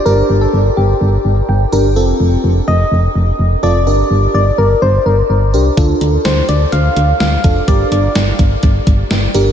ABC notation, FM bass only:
X:1
M:4/4
L:1/8
Q:1/4=126
K:Gm
V:1 name="FM bass" clef=bass
G,,, G,,, G,,, G,,, G,,, G,,, G,,, G,,, | F,,, F,,, F,,, F,,, F,,, F,,, F,,, F,,, | G,,, G,,, G,,, G,,, G,,, G,,, G,,, C,, | D,, D,, D,, D,, D,, D,, D,, F,,, |
G,,, G,,, G,,, G,,, G,,, G,,, G,,, G,,, |]